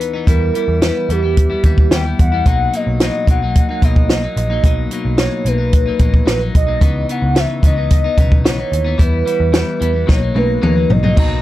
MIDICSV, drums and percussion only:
0, 0, Header, 1, 2, 480
1, 0, Start_track
1, 0, Key_signature, 5, "major"
1, 0, Tempo, 544959
1, 241, Time_signature, 4, 2, 24, 8
1, 10058, End_track
2, 0, Start_track
2, 0, Title_t, "Drums"
2, 6, Note_on_c, 9, 42, 63
2, 94, Note_off_c, 9, 42, 0
2, 240, Note_on_c, 9, 36, 94
2, 244, Note_on_c, 9, 42, 71
2, 328, Note_off_c, 9, 36, 0
2, 332, Note_off_c, 9, 42, 0
2, 484, Note_on_c, 9, 42, 58
2, 572, Note_off_c, 9, 42, 0
2, 722, Note_on_c, 9, 42, 81
2, 723, Note_on_c, 9, 38, 90
2, 810, Note_off_c, 9, 42, 0
2, 811, Note_off_c, 9, 38, 0
2, 967, Note_on_c, 9, 42, 55
2, 1055, Note_off_c, 9, 42, 0
2, 1207, Note_on_c, 9, 42, 78
2, 1210, Note_on_c, 9, 36, 77
2, 1295, Note_off_c, 9, 42, 0
2, 1298, Note_off_c, 9, 36, 0
2, 1439, Note_on_c, 9, 42, 60
2, 1443, Note_on_c, 9, 36, 81
2, 1528, Note_off_c, 9, 42, 0
2, 1531, Note_off_c, 9, 36, 0
2, 1566, Note_on_c, 9, 36, 83
2, 1654, Note_off_c, 9, 36, 0
2, 1684, Note_on_c, 9, 38, 93
2, 1687, Note_on_c, 9, 42, 74
2, 1772, Note_off_c, 9, 38, 0
2, 1775, Note_off_c, 9, 42, 0
2, 1931, Note_on_c, 9, 42, 61
2, 1932, Note_on_c, 9, 36, 90
2, 2019, Note_off_c, 9, 42, 0
2, 2020, Note_off_c, 9, 36, 0
2, 2166, Note_on_c, 9, 36, 93
2, 2167, Note_on_c, 9, 42, 73
2, 2254, Note_off_c, 9, 36, 0
2, 2255, Note_off_c, 9, 42, 0
2, 2407, Note_on_c, 9, 42, 55
2, 2495, Note_off_c, 9, 42, 0
2, 2644, Note_on_c, 9, 42, 84
2, 2645, Note_on_c, 9, 38, 96
2, 2732, Note_off_c, 9, 42, 0
2, 2733, Note_off_c, 9, 38, 0
2, 2884, Note_on_c, 9, 36, 82
2, 2890, Note_on_c, 9, 42, 55
2, 2972, Note_off_c, 9, 36, 0
2, 2978, Note_off_c, 9, 42, 0
2, 3131, Note_on_c, 9, 42, 77
2, 3134, Note_on_c, 9, 36, 80
2, 3219, Note_off_c, 9, 42, 0
2, 3222, Note_off_c, 9, 36, 0
2, 3367, Note_on_c, 9, 36, 84
2, 3368, Note_on_c, 9, 42, 60
2, 3455, Note_off_c, 9, 36, 0
2, 3456, Note_off_c, 9, 42, 0
2, 3490, Note_on_c, 9, 36, 87
2, 3578, Note_off_c, 9, 36, 0
2, 3607, Note_on_c, 9, 38, 90
2, 3610, Note_on_c, 9, 42, 72
2, 3695, Note_off_c, 9, 38, 0
2, 3698, Note_off_c, 9, 42, 0
2, 3849, Note_on_c, 9, 42, 64
2, 3937, Note_off_c, 9, 42, 0
2, 4084, Note_on_c, 9, 36, 96
2, 4086, Note_on_c, 9, 42, 77
2, 4172, Note_off_c, 9, 36, 0
2, 4174, Note_off_c, 9, 42, 0
2, 4324, Note_on_c, 9, 42, 56
2, 4412, Note_off_c, 9, 42, 0
2, 4561, Note_on_c, 9, 42, 82
2, 4562, Note_on_c, 9, 38, 94
2, 4649, Note_off_c, 9, 42, 0
2, 4650, Note_off_c, 9, 38, 0
2, 4806, Note_on_c, 9, 42, 59
2, 4894, Note_off_c, 9, 42, 0
2, 5045, Note_on_c, 9, 42, 80
2, 5049, Note_on_c, 9, 36, 80
2, 5133, Note_off_c, 9, 42, 0
2, 5137, Note_off_c, 9, 36, 0
2, 5278, Note_on_c, 9, 42, 66
2, 5282, Note_on_c, 9, 36, 81
2, 5366, Note_off_c, 9, 42, 0
2, 5370, Note_off_c, 9, 36, 0
2, 5405, Note_on_c, 9, 36, 89
2, 5493, Note_off_c, 9, 36, 0
2, 5525, Note_on_c, 9, 38, 97
2, 5528, Note_on_c, 9, 42, 75
2, 5613, Note_off_c, 9, 38, 0
2, 5616, Note_off_c, 9, 42, 0
2, 5769, Note_on_c, 9, 36, 89
2, 5769, Note_on_c, 9, 42, 65
2, 5857, Note_off_c, 9, 36, 0
2, 5857, Note_off_c, 9, 42, 0
2, 6001, Note_on_c, 9, 36, 91
2, 6003, Note_on_c, 9, 42, 72
2, 6090, Note_off_c, 9, 36, 0
2, 6092, Note_off_c, 9, 42, 0
2, 6245, Note_on_c, 9, 42, 56
2, 6333, Note_off_c, 9, 42, 0
2, 6481, Note_on_c, 9, 42, 78
2, 6483, Note_on_c, 9, 38, 93
2, 6569, Note_off_c, 9, 42, 0
2, 6571, Note_off_c, 9, 38, 0
2, 6720, Note_on_c, 9, 36, 84
2, 6727, Note_on_c, 9, 42, 60
2, 6808, Note_off_c, 9, 36, 0
2, 6815, Note_off_c, 9, 42, 0
2, 6962, Note_on_c, 9, 42, 80
2, 6968, Note_on_c, 9, 36, 81
2, 7050, Note_off_c, 9, 42, 0
2, 7056, Note_off_c, 9, 36, 0
2, 7202, Note_on_c, 9, 36, 82
2, 7202, Note_on_c, 9, 42, 61
2, 7290, Note_off_c, 9, 36, 0
2, 7291, Note_off_c, 9, 42, 0
2, 7326, Note_on_c, 9, 36, 89
2, 7414, Note_off_c, 9, 36, 0
2, 7446, Note_on_c, 9, 38, 98
2, 7450, Note_on_c, 9, 42, 77
2, 7535, Note_off_c, 9, 38, 0
2, 7538, Note_off_c, 9, 42, 0
2, 7690, Note_on_c, 9, 42, 64
2, 7778, Note_off_c, 9, 42, 0
2, 7922, Note_on_c, 9, 36, 96
2, 7924, Note_on_c, 9, 42, 76
2, 8010, Note_off_c, 9, 36, 0
2, 8012, Note_off_c, 9, 42, 0
2, 8167, Note_on_c, 9, 42, 58
2, 8255, Note_off_c, 9, 42, 0
2, 8399, Note_on_c, 9, 42, 83
2, 8400, Note_on_c, 9, 38, 97
2, 8487, Note_off_c, 9, 42, 0
2, 8488, Note_off_c, 9, 38, 0
2, 8646, Note_on_c, 9, 42, 56
2, 8734, Note_off_c, 9, 42, 0
2, 8882, Note_on_c, 9, 38, 49
2, 8888, Note_on_c, 9, 36, 80
2, 8970, Note_off_c, 9, 38, 0
2, 8976, Note_off_c, 9, 36, 0
2, 9124, Note_on_c, 9, 48, 61
2, 9212, Note_off_c, 9, 48, 0
2, 9363, Note_on_c, 9, 47, 72
2, 9451, Note_off_c, 9, 47, 0
2, 9601, Note_on_c, 9, 43, 88
2, 9689, Note_off_c, 9, 43, 0
2, 9720, Note_on_c, 9, 43, 81
2, 9808, Note_off_c, 9, 43, 0
2, 9840, Note_on_c, 9, 36, 94
2, 9842, Note_on_c, 9, 49, 80
2, 9929, Note_off_c, 9, 36, 0
2, 9930, Note_off_c, 9, 49, 0
2, 10058, End_track
0, 0, End_of_file